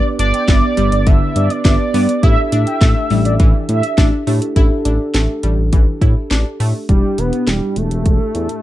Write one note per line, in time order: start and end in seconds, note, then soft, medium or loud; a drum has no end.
0.00 1.61 B3 medium
0.00 1.61 D4 medium
0.00 1.61 G4 medium
0.00 1.61 B4 medium
0.19 0.32 G1 loud
0.19 0.37 D4 medium
0.19 1.08 D5 loud
0.19 closed hi-hat medium
0.34 0.43 G5 medium
0.34 closed hi-hat medium
0.48 0.62 G1 loud
0.48 0.66 B3 medium
0.48 0.57 E5 medium
0.48 kick loud
0.48 snare loud
0.48 closed hi-hat medium
0.77 0.91 G1 medium
0.77 0.95 G3 medium
0.77 closed hi-hat medium
0.92 1.05 G1 loud
0.92 1.01 D5 medium
0.92 closed hi-hat medium
1.07 1.20 G1 loud
1.07 1.24 D3 medium
1.07 1.52 E5 loud
1.07 kick loud
1.07 closed hi-hat medium
1.36 1.49 G2 loud
1.36 1.54 D5 loud
1.36 closed hi-hat medium
1.50 1.64 D5 loud
1.50 closed hi-hat medium
1.65 1.78 G1 loud
1.65 2.23 B3 medium
1.65 1.82 D4 medium
1.65 2.22 D4 soft
1.65 2.22 G4 soft
1.65 2.23 B4 medium
1.65 2.25 D5 loud
1.65 1.74 E5 medium
1.65 kick loud
1.65 snare loud
1.65 closed hi-hat medium
1.94 2.07 G2 loud
1.94 2.11 B3 medium
1.94 2.03 D5 medium
1.94 open hi-hat medium
2.09 closed hi-hat medium
2.23 2.36 A1 loud
2.23 4.23 D4 medium
2.23 2.40 E4 loud
2.23 4.23 E4 medium
2.23 4.23 G4 medium
2.23 4.23 A4 medium
2.23 2.41 E5 loud
2.23 3.98 E5 loud
2.23 kick loud
2.23 closed hi-hat medium
2.52 2.65 A1 loud
2.52 2.70 D4 medium
2.52 closed hi-hat medium
2.67 2.76 G5 medium
2.67 closed hi-hat medium
2.81 2.95 A1 loud
2.81 2.99 A3 medium
2.81 2.90 E5 medium
2.81 kick loud
2.81 snare loud
2.81 closed hi-hat medium
3.10 3.24 A1 loud
3.10 3.28 G3 medium
3.10 open hi-hat medium
3.25 3.38 A1 loud
3.25 3.34 D5 medium
3.25 closed hi-hat medium
3.40 3.53 A1 loud
3.40 3.57 E3 medium
3.40 kick loud
3.40 closed hi-hat medium
3.69 3.82 A2 loud
3.69 4.10 E5 medium
3.69 closed hi-hat medium
3.83 closed hi-hat medium
3.98 4.11 A1 loud
3.98 4.15 D4 medium
3.98 kick loud
3.98 snare loud
3.98 closed hi-hat medium
4.27 4.40 A2 loud
4.27 4.44 A3 medium
4.27 4.55 D4 medium
4.27 4.56 E4 medium
4.27 4.55 G4 medium
4.27 4.55 A4 medium
4.27 open hi-hat medium
4.42 closed hi-hat medium
4.56 4.69 A1 loud
4.56 6.85 D4 medium
4.56 4.74 E4 loud
4.56 6.85 G4 medium
4.56 6.85 A4 medium
4.56 kick loud
4.56 closed hi-hat medium
4.85 4.99 A1 loud
4.85 5.03 D4 medium
4.85 closed hi-hat medium
5.14 5.28 A1 loud
5.14 5.32 A3 medium
5.14 snare loud
5.14 closed hi-hat medium
5.43 5.57 A1 medium
5.43 5.61 G3 medium
5.43 closed hi-hat medium
5.58 5.71 A1 medium
5.73 5.86 A1 loud
5.73 5.90 E3 medium
5.73 kick medium
5.73 closed hi-hat medium
6.02 6.15 A2 loud
6.02 6.19 E4 medium
6.02 kick medium
6.02 closed hi-hat medium
6.31 6.44 A1 loud
6.31 6.48 D4 medium
6.31 snare loud
6.31 closed hi-hat medium
6.60 6.73 A2 medium
6.60 6.77 A3 medium
6.60 open hi-hat medium
6.89 7.02 E1 loud
6.89 7.20 G3 medium
6.89 8.62 D4 medium
6.89 8.62 E4 medium
6.89 8.62 G4 medium
6.89 kick loud
6.89 closed hi-hat medium
7.18 7.31 E1 medium
7.18 7.49 B3 medium
7.18 closed hi-hat medium
7.33 closed hi-hat soft
7.47 7.61 E1 medium
7.47 7.78 G3 medium
7.47 snare loud
7.47 closed hi-hat medium
7.76 7.90 E1 medium
7.76 8.62 A3 loud
7.76 closed hi-hat medium
7.91 8.04 E1 loud
7.91 closed hi-hat soft
8.06 8.19 E1 loud
8.06 kick medium
8.06 closed hi-hat medium
8.35 8.48 E2 loud
8.35 closed hi-hat medium
8.49 closed hi-hat soft